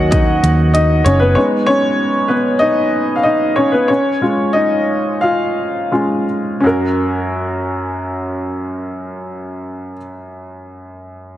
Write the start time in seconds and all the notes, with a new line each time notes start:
Already playing: D#2 F#3 A#3 C#4 D#4 F#4 C#5 D#5 F#5
0.11 D#4 D#5, kick, closed hi-hat
0.43 D#2, closed hi-hat
0.74 D#4 D#5, closed hi-hat
1.04 F#1 C#4 C#5, closed hi-hat
1.20 B3 B4
1.35 G#3 B3 C#4 D#4 C#5
1.66 C#4 C#5
2.28 B3 B4
2.59 D#4 D#5
3.16 F5
3.23 D#4 D#5
3.56 C#4 C#5
3.72 B3 B4
3.88 C#4 C#5
4.21 G#3 C#4 F4
4.53 D#4 D#5
5.21 F4 F5
5.91 G#3 C#4 F4
6.60 F#2 C#4 F#4
6.67 A#4